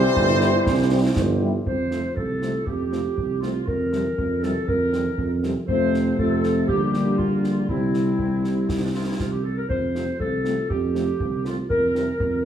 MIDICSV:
0, 0, Header, 1, 10, 480
1, 0, Start_track
1, 0, Key_signature, -1, "major"
1, 0, Tempo, 501672
1, 631, Time_signature, 2, 2, 24, 8
1, 11912, End_track
2, 0, Start_track
2, 0, Title_t, "Glockenspiel"
2, 0, Program_c, 0, 9
2, 0, Note_on_c, 0, 84, 91
2, 1313, Note_off_c, 0, 84, 0
2, 11912, End_track
3, 0, Start_track
3, 0, Title_t, "Flute section"
3, 0, Program_c, 1, 73
3, 0, Note_on_c, 1, 72, 97
3, 1311, Note_off_c, 1, 72, 0
3, 11912, End_track
4, 0, Start_track
4, 0, Title_t, "Woodwind section"
4, 0, Program_c, 2, 71
4, 0, Note_on_c, 2, 72, 98
4, 1307, Note_off_c, 2, 72, 0
4, 1586, Note_on_c, 2, 72, 70
4, 2035, Note_off_c, 2, 72, 0
4, 2058, Note_on_c, 2, 69, 60
4, 2542, Note_on_c, 2, 67, 65
4, 2546, Note_off_c, 2, 69, 0
4, 3261, Note_on_c, 2, 65, 57
4, 3269, Note_off_c, 2, 67, 0
4, 3491, Note_off_c, 2, 65, 0
4, 3512, Note_on_c, 2, 70, 68
4, 4227, Note_on_c, 2, 69, 64
4, 4234, Note_off_c, 2, 70, 0
4, 4472, Note_off_c, 2, 69, 0
4, 4476, Note_on_c, 2, 70, 75
4, 5159, Note_off_c, 2, 70, 0
4, 5426, Note_on_c, 2, 72, 85
4, 5878, Note_off_c, 2, 72, 0
4, 5916, Note_on_c, 2, 69, 83
4, 6384, Note_on_c, 2, 67, 77
4, 6397, Note_off_c, 2, 69, 0
4, 6837, Note_off_c, 2, 67, 0
4, 6864, Note_on_c, 2, 65, 67
4, 7317, Note_off_c, 2, 65, 0
4, 7351, Note_on_c, 2, 64, 66
4, 8397, Note_off_c, 2, 64, 0
4, 8436, Note_on_c, 2, 62, 50
4, 8491, Note_off_c, 2, 62, 0
4, 8560, Note_on_c, 2, 65, 57
4, 8671, Note_off_c, 2, 65, 0
4, 8676, Note_on_c, 2, 64, 52
4, 8731, Note_off_c, 2, 64, 0
4, 8779, Note_on_c, 2, 65, 57
4, 8900, Note_off_c, 2, 65, 0
4, 8910, Note_on_c, 2, 67, 54
4, 9029, Note_on_c, 2, 69, 55
4, 9034, Note_off_c, 2, 67, 0
4, 9154, Note_off_c, 2, 69, 0
4, 9158, Note_on_c, 2, 70, 61
4, 9266, Note_on_c, 2, 72, 67
4, 9269, Note_off_c, 2, 70, 0
4, 9718, Note_off_c, 2, 72, 0
4, 9755, Note_on_c, 2, 69, 63
4, 10202, Note_off_c, 2, 69, 0
4, 10232, Note_on_c, 2, 67, 69
4, 10916, Note_off_c, 2, 67, 0
4, 10955, Note_on_c, 2, 65, 60
4, 11063, Note_off_c, 2, 65, 0
4, 11186, Note_on_c, 2, 70, 80
4, 11872, Note_off_c, 2, 70, 0
4, 11912, End_track
5, 0, Start_track
5, 0, Title_t, "Euphonium"
5, 0, Program_c, 3, 58
5, 0, Note_on_c, 3, 64, 82
5, 1311, Note_off_c, 3, 64, 0
5, 11912, End_track
6, 0, Start_track
6, 0, Title_t, "Trumpet section"
6, 0, Program_c, 4, 61
6, 0, Note_on_c, 4, 72, 119
6, 1353, Note_off_c, 4, 72, 0
6, 1836, Note_on_c, 4, 60, 42
6, 1922, Note_off_c, 4, 60, 0
6, 2310, Note_on_c, 4, 60, 39
6, 2397, Note_off_c, 4, 60, 0
6, 2783, Note_on_c, 4, 60, 43
6, 2872, Note_off_c, 4, 60, 0
6, 3267, Note_on_c, 4, 60, 41
6, 3355, Note_off_c, 4, 60, 0
6, 3741, Note_on_c, 4, 60, 46
6, 3831, Note_off_c, 4, 60, 0
6, 4223, Note_on_c, 4, 60, 42
6, 4312, Note_off_c, 4, 60, 0
6, 4705, Note_on_c, 4, 60, 50
6, 4794, Note_off_c, 4, 60, 0
6, 5195, Note_on_c, 4, 60, 49
6, 5282, Note_off_c, 4, 60, 0
6, 5420, Note_on_c, 4, 60, 59
6, 5875, Note_off_c, 4, 60, 0
6, 5916, Note_on_c, 4, 60, 61
6, 6364, Note_off_c, 4, 60, 0
6, 6393, Note_on_c, 4, 58, 64
6, 7356, Note_off_c, 4, 58, 0
6, 7358, Note_on_c, 4, 60, 60
6, 9000, Note_off_c, 4, 60, 0
6, 9525, Note_on_c, 4, 60, 42
6, 9610, Note_off_c, 4, 60, 0
6, 10000, Note_on_c, 4, 60, 38
6, 10086, Note_off_c, 4, 60, 0
6, 10477, Note_on_c, 4, 60, 42
6, 10563, Note_off_c, 4, 60, 0
6, 10967, Note_on_c, 4, 60, 42
6, 11051, Note_off_c, 4, 60, 0
6, 11437, Note_on_c, 4, 60, 46
6, 11523, Note_off_c, 4, 60, 0
6, 11912, End_track
7, 0, Start_track
7, 0, Title_t, "Trombone section"
7, 0, Program_c, 5, 61
7, 0, Note_on_c, 5, 52, 84
7, 0, Note_on_c, 5, 55, 81
7, 1314, Note_off_c, 5, 55, 0
7, 1319, Note_off_c, 5, 52, 0
7, 11912, End_track
8, 0, Start_track
8, 0, Title_t, "French horn section"
8, 0, Program_c, 6, 60
8, 397, Note_on_c, 6, 67, 66
8, 402, Note_on_c, 6, 64, 65
8, 403, Note_on_c, 6, 55, 67
8, 482, Note_off_c, 6, 67, 0
8, 485, Note_off_c, 6, 64, 0
8, 487, Note_off_c, 6, 55, 0
8, 872, Note_on_c, 6, 55, 70
8, 874, Note_on_c, 6, 64, 66
8, 876, Note_on_c, 6, 67, 67
8, 958, Note_off_c, 6, 55, 0
8, 960, Note_off_c, 6, 64, 0
8, 961, Note_off_c, 6, 67, 0
8, 1345, Note_on_c, 6, 55, 65
8, 1346, Note_on_c, 6, 64, 63
8, 1347, Note_on_c, 6, 67, 66
8, 1433, Note_off_c, 6, 55, 0
8, 1433, Note_off_c, 6, 64, 0
8, 1434, Note_off_c, 6, 67, 0
8, 1835, Note_on_c, 6, 53, 39
8, 1837, Note_on_c, 6, 57, 41
8, 1838, Note_on_c, 6, 48, 40
8, 1921, Note_off_c, 6, 53, 0
8, 1922, Note_off_c, 6, 57, 0
8, 1923, Note_off_c, 6, 48, 0
8, 2304, Note_on_c, 6, 48, 40
8, 2306, Note_on_c, 6, 53, 40
8, 2309, Note_on_c, 6, 57, 42
8, 2392, Note_off_c, 6, 48, 0
8, 2394, Note_off_c, 6, 53, 0
8, 2396, Note_off_c, 6, 57, 0
8, 2780, Note_on_c, 6, 53, 42
8, 2781, Note_on_c, 6, 57, 40
8, 2784, Note_on_c, 6, 48, 40
8, 2870, Note_off_c, 6, 53, 0
8, 2870, Note_off_c, 6, 57, 0
8, 2873, Note_off_c, 6, 48, 0
8, 3272, Note_on_c, 6, 57, 41
8, 3273, Note_on_c, 6, 48, 44
8, 3273, Note_on_c, 6, 53, 43
8, 3359, Note_off_c, 6, 53, 0
8, 3359, Note_off_c, 6, 57, 0
8, 3360, Note_off_c, 6, 48, 0
8, 3751, Note_on_c, 6, 55, 43
8, 3753, Note_on_c, 6, 52, 45
8, 3756, Note_on_c, 6, 48, 42
8, 3838, Note_off_c, 6, 55, 0
8, 3840, Note_off_c, 6, 52, 0
8, 3842, Note_off_c, 6, 48, 0
8, 4237, Note_on_c, 6, 48, 48
8, 4237, Note_on_c, 6, 52, 45
8, 4238, Note_on_c, 6, 55, 44
8, 4323, Note_off_c, 6, 48, 0
8, 4323, Note_off_c, 6, 52, 0
8, 4324, Note_off_c, 6, 55, 0
8, 4707, Note_on_c, 6, 52, 45
8, 4708, Note_on_c, 6, 48, 47
8, 4711, Note_on_c, 6, 55, 48
8, 4796, Note_off_c, 6, 48, 0
8, 4796, Note_off_c, 6, 52, 0
8, 4799, Note_off_c, 6, 55, 0
8, 5195, Note_on_c, 6, 48, 50
8, 5197, Note_on_c, 6, 52, 53
8, 5198, Note_on_c, 6, 55, 49
8, 5282, Note_off_c, 6, 48, 0
8, 5284, Note_off_c, 6, 52, 0
8, 5284, Note_off_c, 6, 55, 0
8, 5442, Note_on_c, 6, 57, 56
8, 5443, Note_on_c, 6, 48, 57
8, 5443, Note_on_c, 6, 53, 55
8, 5887, Note_off_c, 6, 48, 0
8, 5887, Note_off_c, 6, 53, 0
8, 5887, Note_off_c, 6, 57, 0
8, 5916, Note_on_c, 6, 57, 55
8, 5921, Note_on_c, 6, 53, 58
8, 5922, Note_on_c, 6, 48, 57
8, 6364, Note_off_c, 6, 57, 0
8, 6367, Note_off_c, 6, 48, 0
8, 6367, Note_off_c, 6, 53, 0
8, 6396, Note_on_c, 6, 55, 55
8, 6399, Note_on_c, 6, 50, 61
8, 6401, Note_off_c, 6, 55, 0
8, 6401, Note_on_c, 6, 55, 59
8, 7321, Note_off_c, 6, 50, 0
8, 7343, Note_off_c, 6, 55, 0
8, 7353, Note_on_c, 6, 48, 54
8, 7354, Note_on_c, 6, 55, 44
8, 7356, Note_off_c, 6, 55, 0
8, 7356, Note_on_c, 6, 55, 54
8, 8997, Note_off_c, 6, 48, 0
8, 8999, Note_off_c, 6, 55, 0
8, 9514, Note_on_c, 6, 48, 42
8, 9514, Note_on_c, 6, 57, 40
8, 9515, Note_on_c, 6, 53, 44
8, 9601, Note_off_c, 6, 48, 0
8, 9601, Note_off_c, 6, 57, 0
8, 9602, Note_off_c, 6, 53, 0
8, 9991, Note_on_c, 6, 57, 43
8, 9994, Note_on_c, 6, 48, 43
8, 9996, Note_on_c, 6, 53, 41
8, 10079, Note_off_c, 6, 57, 0
8, 10082, Note_off_c, 6, 48, 0
8, 10083, Note_off_c, 6, 53, 0
8, 10466, Note_on_c, 6, 48, 41
8, 10468, Note_on_c, 6, 53, 43
8, 10471, Note_on_c, 6, 57, 44
8, 10555, Note_off_c, 6, 48, 0
8, 10556, Note_off_c, 6, 53, 0
8, 10559, Note_off_c, 6, 57, 0
8, 10955, Note_on_c, 6, 53, 43
8, 10955, Note_on_c, 6, 57, 45
8, 10956, Note_on_c, 6, 48, 44
8, 11041, Note_off_c, 6, 57, 0
8, 11042, Note_off_c, 6, 53, 0
8, 11043, Note_off_c, 6, 48, 0
8, 11424, Note_on_c, 6, 55, 43
8, 11425, Note_on_c, 6, 52, 43
8, 11428, Note_on_c, 6, 48, 46
8, 11513, Note_off_c, 6, 55, 0
8, 11514, Note_off_c, 6, 52, 0
8, 11516, Note_off_c, 6, 48, 0
8, 11912, End_track
9, 0, Start_track
9, 0, Title_t, "Tuba"
9, 0, Program_c, 7, 58
9, 149, Note_on_c, 7, 31, 89
9, 549, Note_off_c, 7, 31, 0
9, 629, Note_on_c, 7, 36, 86
9, 1030, Note_off_c, 7, 36, 0
9, 1106, Note_on_c, 7, 31, 87
9, 1508, Note_off_c, 7, 31, 0
9, 1585, Note_on_c, 7, 41, 58
9, 1989, Note_off_c, 7, 41, 0
9, 2069, Note_on_c, 7, 36, 51
9, 2471, Note_off_c, 7, 36, 0
9, 2553, Note_on_c, 7, 41, 52
9, 2954, Note_off_c, 7, 41, 0
9, 3035, Note_on_c, 7, 36, 52
9, 3435, Note_off_c, 7, 36, 0
9, 3511, Note_on_c, 7, 41, 56
9, 3913, Note_off_c, 7, 41, 0
9, 3991, Note_on_c, 7, 41, 54
9, 4394, Note_off_c, 7, 41, 0
9, 4470, Note_on_c, 7, 41, 60
9, 4873, Note_off_c, 7, 41, 0
9, 4952, Note_on_c, 7, 41, 65
9, 5306, Note_off_c, 7, 41, 0
9, 5426, Note_on_c, 7, 41, 67
9, 5856, Note_off_c, 7, 41, 0
9, 5914, Note_on_c, 7, 41, 64
9, 6339, Note_off_c, 7, 41, 0
9, 6395, Note_on_c, 7, 34, 62
9, 6820, Note_off_c, 7, 34, 0
9, 6876, Note_on_c, 7, 34, 57
9, 7301, Note_off_c, 7, 34, 0
9, 7354, Note_on_c, 7, 36, 55
9, 7780, Note_off_c, 7, 36, 0
9, 7834, Note_on_c, 7, 36, 51
9, 8260, Note_off_c, 7, 36, 0
9, 8319, Note_on_c, 7, 36, 52
9, 8742, Note_off_c, 7, 36, 0
9, 8797, Note_on_c, 7, 36, 48
9, 9221, Note_off_c, 7, 36, 0
9, 9277, Note_on_c, 7, 41, 53
9, 9677, Note_off_c, 7, 41, 0
9, 9762, Note_on_c, 7, 36, 51
9, 10159, Note_off_c, 7, 36, 0
9, 10245, Note_on_c, 7, 41, 58
9, 10641, Note_off_c, 7, 41, 0
9, 10720, Note_on_c, 7, 36, 52
9, 11118, Note_off_c, 7, 36, 0
9, 11196, Note_on_c, 7, 41, 55
9, 11595, Note_off_c, 7, 41, 0
9, 11675, Note_on_c, 7, 41, 57
9, 11912, Note_off_c, 7, 41, 0
9, 11912, End_track
10, 0, Start_track
10, 0, Title_t, "Drums"
10, 156, Note_on_c, 9, 35, 82
10, 252, Note_off_c, 9, 35, 0
10, 394, Note_on_c, 9, 38, 53
10, 490, Note_off_c, 9, 38, 0
10, 636, Note_on_c, 9, 35, 85
10, 636, Note_on_c, 9, 38, 65
10, 732, Note_off_c, 9, 35, 0
10, 732, Note_off_c, 9, 38, 0
10, 1113, Note_on_c, 9, 35, 79
10, 1113, Note_on_c, 9, 38, 78
10, 1208, Note_off_c, 9, 35, 0
10, 1208, Note_off_c, 9, 38, 0
10, 1592, Note_on_c, 9, 35, 60
10, 1687, Note_off_c, 9, 35, 0
10, 1830, Note_on_c, 9, 38, 31
10, 1926, Note_off_c, 9, 38, 0
10, 2075, Note_on_c, 9, 35, 59
10, 2171, Note_off_c, 9, 35, 0
10, 2318, Note_on_c, 9, 38, 32
10, 2413, Note_off_c, 9, 38, 0
10, 2552, Note_on_c, 9, 35, 65
10, 2648, Note_off_c, 9, 35, 0
10, 2801, Note_on_c, 9, 38, 32
10, 2896, Note_off_c, 9, 38, 0
10, 3040, Note_on_c, 9, 35, 59
10, 3136, Note_off_c, 9, 35, 0
10, 3281, Note_on_c, 9, 38, 31
10, 3376, Note_off_c, 9, 38, 0
10, 3518, Note_on_c, 9, 35, 63
10, 3614, Note_off_c, 9, 35, 0
10, 3759, Note_on_c, 9, 38, 35
10, 3855, Note_off_c, 9, 38, 0
10, 4001, Note_on_c, 9, 35, 62
10, 4096, Note_off_c, 9, 35, 0
10, 4240, Note_on_c, 9, 38, 32
10, 4336, Note_off_c, 9, 38, 0
10, 4480, Note_on_c, 9, 35, 67
10, 4576, Note_off_c, 9, 35, 0
10, 4717, Note_on_c, 9, 38, 32
10, 4813, Note_off_c, 9, 38, 0
10, 4956, Note_on_c, 9, 35, 65
10, 5052, Note_off_c, 9, 35, 0
10, 5199, Note_on_c, 9, 38, 33
10, 5295, Note_off_c, 9, 38, 0
10, 5440, Note_on_c, 9, 35, 69
10, 5536, Note_off_c, 9, 35, 0
10, 5685, Note_on_c, 9, 38, 35
10, 5781, Note_off_c, 9, 38, 0
10, 5921, Note_on_c, 9, 35, 66
10, 6017, Note_off_c, 9, 35, 0
10, 6158, Note_on_c, 9, 38, 35
10, 6254, Note_off_c, 9, 38, 0
10, 6397, Note_on_c, 9, 35, 67
10, 6492, Note_off_c, 9, 35, 0
10, 6640, Note_on_c, 9, 38, 34
10, 6735, Note_off_c, 9, 38, 0
10, 6878, Note_on_c, 9, 35, 60
10, 6974, Note_off_c, 9, 35, 0
10, 7119, Note_on_c, 9, 38, 34
10, 7214, Note_off_c, 9, 38, 0
10, 7356, Note_on_c, 9, 35, 64
10, 7452, Note_off_c, 9, 35, 0
10, 7597, Note_on_c, 9, 38, 32
10, 7693, Note_off_c, 9, 38, 0
10, 7834, Note_on_c, 9, 35, 60
10, 7930, Note_off_c, 9, 35, 0
10, 8078, Note_on_c, 9, 38, 31
10, 8174, Note_off_c, 9, 38, 0
10, 8315, Note_on_c, 9, 35, 66
10, 8315, Note_on_c, 9, 38, 51
10, 8410, Note_off_c, 9, 35, 0
10, 8410, Note_off_c, 9, 38, 0
10, 8801, Note_on_c, 9, 35, 58
10, 8801, Note_on_c, 9, 38, 45
10, 8897, Note_off_c, 9, 35, 0
10, 8897, Note_off_c, 9, 38, 0
10, 9279, Note_on_c, 9, 35, 69
10, 9375, Note_off_c, 9, 35, 0
10, 9524, Note_on_c, 9, 38, 34
10, 9620, Note_off_c, 9, 38, 0
10, 9760, Note_on_c, 9, 35, 62
10, 9855, Note_off_c, 9, 35, 0
10, 9998, Note_on_c, 9, 38, 34
10, 10094, Note_off_c, 9, 38, 0
10, 10240, Note_on_c, 9, 35, 69
10, 10335, Note_off_c, 9, 35, 0
10, 10481, Note_on_c, 9, 38, 32
10, 10576, Note_off_c, 9, 38, 0
10, 10717, Note_on_c, 9, 35, 64
10, 10813, Note_off_c, 9, 35, 0
10, 10958, Note_on_c, 9, 38, 33
10, 11054, Note_off_c, 9, 38, 0
10, 11195, Note_on_c, 9, 35, 67
10, 11291, Note_off_c, 9, 35, 0
10, 11439, Note_on_c, 9, 38, 33
10, 11534, Note_off_c, 9, 38, 0
10, 11673, Note_on_c, 9, 35, 67
10, 11769, Note_off_c, 9, 35, 0
10, 11912, End_track
0, 0, End_of_file